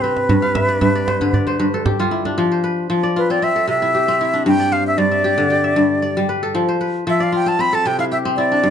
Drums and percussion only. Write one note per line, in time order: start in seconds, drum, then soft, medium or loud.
0.03 djembe slap soft
0.17 djembe slap medium
0.29 djembe bass medium
0.55 djembe slap medium
0.55 djembe tone medium
0.82 djembe bass medium
1.08 djembe slap medium
1.21 djembe tone medium
1.33 djembe slap soft
1.33 djembe bass medium
1.47 djembe slap medium
1.86 djembe slap medium
1.86 djembe tone medium
1.86 djembe bass medium
1.99 djembe slap soft
2.25 djembe slap medium